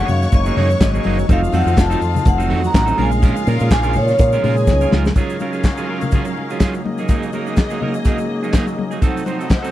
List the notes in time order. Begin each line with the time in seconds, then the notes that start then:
Already playing: D#3 G#3 A#3 C#4 F#4 C#5 C#6
0.08 F#2 F5, muted clean electric guitar stroke, open hi-hat, low conga, shaker
0.22 muted clean electric guitar stroke, snare, shaker
0.32 F#1 D#5, muted clean electric guitar stroke, kick, closed hi-hat, shaker
0.46 F#3 A#3 D#4 G#4, shaker
0.57 F#2 F#3 A#3 D#4 G#4 C#5, open hi-hat, muted conga, low conga
0.70 muted clean electric guitar stroke, shaker
0.80 G#1 D#5, muted clean electric guitar stroke, kick, snare, clap, closed hi-hat, high conga, shaker
0.94 F#3 A#3 D#4 G#4, shaker
1.04 F#1 F#3 A#3 D#4 G#4, open hi-hat, high conga
1.19 muted clean electric guitar stroke, high conga, shaker
1.29 F1 F#3 A3 C4 D#4 F4 A4 F5, kick, closed hi-hat, muted conga, shaker
1.42 muted clean electric guitar stroke, shaker
1.52 F2 F#3 C4 D#4 A4 F#5, open hi-hat, muted conga, shaker
1.66 F2 F#3 C4 D#4 A4, shaker
1.77 F1 A5, kick, snare, clap, closed hi-hat, high conga, shaker
1.90 F#3 C4 D#4 A4, shaker
2.01 F2, muted clean electric guitar stroke, open hi-hat, shaker
2.15 muted clean electric guitar stroke, low conga, shaker
2.25 F1 F#5, muted clean electric guitar stroke, kick, closed hi-hat, low conga, shaker
2.38 F#3 C4 D#4 A4, shaker
2.49 F2 F#3 C4 D#4 F#4 A4 F#5, open hi-hat, muted conga
2.62 A#5, muted clean electric guitar stroke, shaker
2.73 A1, muted clean electric guitar stroke, kick, snare, clap, closed hi-hat, high conga, shaker
2.86 F#3 C4 D#4 A4, shaker
2.97 A#1 C#3 F3 G#3 A#3 C#4 F4 A#4 F5, open hi-hat, high conga
3.02 G#5
3.11 muted clean electric guitar stroke, high conga, shaker
3.22 G#3 C#4 F4 A#4, kick, closed hi-hat, muted conga, shaker
3.36 muted clean electric guitar stroke, shaker
3.47 A#2 G#3 C#4 F4 A#4, open hi-hat, muted conga, shaker
3.60 A#2 G#3 C#4 F4 A#4, shaker
3.71 A#1 G#5, muted clean electric guitar stroke, kick, snare, clap, closed hi-hat, high conga, shaker
3.83 G#3 C#4 F4 A#4, shaker
3.93 A#2 C#5, muted clean electric guitar stroke, open hi-hat, low conga, shaker
4.08 muted clean electric guitar stroke, snare, shaker
4.19 A#2, muted clean electric guitar stroke, kick, closed hi-hat, shaker
4.32 G#3 C#4 F4 A#4, shaker
4.43 A#2 G#3 C#4 F4 G#4 A#4 G#5, open hi-hat, muted conga, low conga
4.57 muted clean electric guitar stroke, shaker
4.67 C#2, muted clean electric guitar stroke, kick, snare, high conga, shaker
4.81 G#3 C#4 F4 A#4, shaker
4.91 C#2 G#3 C#4 F4 A#4, snare, high conga
5.05 muted clean electric guitar stroke, snare, high conga, shaker
5.16 C#3 F#3 G#3 C#4 D#4 F4 G#4 A#4 F5, kick, closed hi-hat, muted conga, shaker
5.30 shaker
5.40 F#3 C#4 F4 A#4, muted conga, shaker
5.53 F#3 C#4 F4 G#4, shaker
5.64 muted clean electric guitar stroke, kick, snare, clap, closed hi-hat, high conga, shaker
5.77 F#3 C#4 F4 G#4, shaker
5.88 F#3 C#4 F4 A#4
6.01 muted clean electric guitar stroke, low conga, shaker
6.11 F#3 C#4 F4 G#4, kick, closed hi-hat, low conga, shaker
6.25 muted clean electric guitar stroke, shaker
6.37 muted clean electric guitar stroke, muted conga
6.50 F#3 C#4 F4 G#4, shaker
6.60 F#3 C#4 F4 G#4, kick, snare, clap, closed hi-hat, high conga, shaker
6.74 muted clean electric guitar stroke, shaker
6.84 F#3 A#3 D#4 G#4 D#5, muted clean electric guitar stroke, high conga
6.98 F#3 A#3 D#4 G#4, shaker
7.08 F#3 A#3 D#4 G#4, kick, closed hi-hat, muted conga, shaker
7.23 shaker
7.33 F#3 A#3 D#4 A#4, muted conga, shaker
7.47 F#3 A#3 D#4 G#4, shaker
7.57 muted clean electric guitar stroke, kick, snare, clap, closed hi-hat, high conga, shaker
7.70 F#3 A#3 D#4 G#4, shaker
7.81 F#3 A#3 D#4 A#4, low conga
7.94 muted clean electric guitar stroke, shaker
8.05 F#3 A#3 D#4 G#4, kick, closed hi-hat, shaker
8.18 muted clean electric guitar stroke, shaker
8.31 muted clean electric guitar stroke
8.43 F#3 A#3 D#4 G#4, shaker
8.53 F#3 A#3 D#4 G#4, kick, snare, clap, closed hi-hat, high conga, shaker
8.67 muted clean electric guitar stroke, shaker
8.77 muted clean electric guitar stroke, high conga
8.91 F#3 A#3 D#4 G#4, shaker
9.01 C3 F3 F#3 A3 C4 D#4 A4 C5 F#5, kick, closed hi-hat, muted conga, shaker
9.17 shaker
9.26 F#3 C4 D#4 C5, muted conga, shaker
9.39 F#3 C4 D#4 A4, shaker
9.49 muted clean electric guitar stroke, kick, snare, clap, closed hi-hat, high conga, shaker
9.63 F#3 C4 D#4 A4, shaker